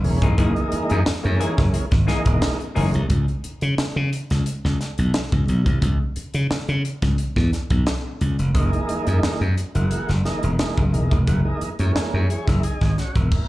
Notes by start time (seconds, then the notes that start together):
0.04 E1 E3 G#3 A#3 C#4, open hi-hat
0.22 F1 E3 A#3 D#4 G#4, kick, closed hi-hat
0.38 F#1 E3 G#3 A#3 D#4 G#4, kick, closed hi-hat
0.56 muted clean electric guitar stroke, closed hi-hat
0.72 muted clean electric guitar stroke, muted slap bass stroke, closed hi-hat
0.90 F#2 E3 A#3 D#4 G#4, closed hi-hat
1.06 muted clean electric guitar stroke, muted slap bass stroke, snare, closed hi-hat, tambourine
1.23 F#2 E3 G#3 A#3 C#4, muted clean electric guitar stroke, closed hi-hat
1.39 E3 A#3 D#4 G#4, closed hi-hat
1.57 F#1, muted clean electric guitar stroke, kick, snare, closed hi-hat
1.74 closed hi-hat
1.91 G#1, muted clean electric guitar stroke, kick, snare, closed hi-hat
2.06 E3 G#3 A#3 D#4 G#4, snare, closed hi-hat
2.25 E1, muted clean electric guitar stroke, kick, closed hi-hat
2.41 muted clean electric guitar stroke, snare, closed hi-hat, tambourine
2.59 muted clean electric guitar stroke, closed hi-hat
2.75 F#1 E3 G#3 A#3 C#4 D#4 G#4, open hi-hat
2.94 C2, closed hi-hat
3.10 C#2, kick, closed hi-hat
3.28 closed hi-hat
3.44 muted slap bass stroke, closed hi-hat
3.61 C#3, closed hi-hat
3.78 muted slap bass stroke, snare, closed hi-hat
3.96 C#3
4.13 closed hi-hat
4.30 C#2, snare, closed hi-hat
4.46 closed hi-hat
4.64 C#2, snare
4.81 snare, closed hi-hat
4.98 B1, closed hi-hat
5.14 snare, closed hi-hat
5.32 C#2, kick, closed hi-hat
5.48 B1, closed hi-hat
5.66 C2, kick, closed hi-hat
5.82 C#2, kick, closed hi-hat
6.16 muted slap bass stroke, closed hi-hat
6.34 C#3, closed hi-hat
6.51 muted slap bass stroke, snare, closed hi-hat
6.68 C#3, closed hi-hat
6.85 closed hi-hat
7.02 C#2, kick, snare, closed hi-hat
7.18 closed hi-hat
7.36 E2, kick, snare
7.53 snare, closed hi-hat
7.70 B1, kick, closed hi-hat
7.86 snare, closed hi-hat
8.21 C#2, closed hi-hat
8.39 F1, closed hi-hat
8.54 F#1 E3 G#3 A#3 D#4, kick, closed hi-hat
8.73 closed hi-hat
8.89 muted slap bass stroke, closed hi-hat
9.07 F#2, closed hi-hat
9.23 muted slap bass stroke, snare, closed hi-hat
9.41 F#2, closed hi-hat
9.58 closed hi-hat
9.75 F#1 E3 G#3 A#3 F#4, closed hi-hat
9.91 closed hi-hat
10.09 F#1, snare, closed hi-hat
10.25 E3 G#3 A#3 D#4, snare, closed hi-hat
10.43 E1, closed hi-hat
10.59 E3 G#3 A#3 D#4, snare, closed hi-hat
10.78 F#1, kick, closed hi-hat
10.93 E1 E3 G#3 A#3 D#4, closed hi-hat
11.11 F1, kick, closed hi-hat
11.27 F#1 E3 G#3 A#3 F#4, kick, closed hi-hat
11.45 E3 G#3 A#3 D#4
11.61 muted slap bass stroke, closed hi-hat
11.79 F#2 E3 G#3 A#3 C#4, closed hi-hat
11.95 muted slap bass stroke, snare, closed hi-hat
12.14 F#2
12.29 G#4 C#5, closed hi-hat
12.47 F#1 E4 A#4, kick, snare, closed hi-hat
12.63 D#4 G#4, closed hi-hat
12.81 G#1, kick, snare, closed hi-hat
12.98 C#4 F#4, snare, closed hi-hat
13.15 E1 A#3 E4, kick, closed hi-hat
13.32 kick, crash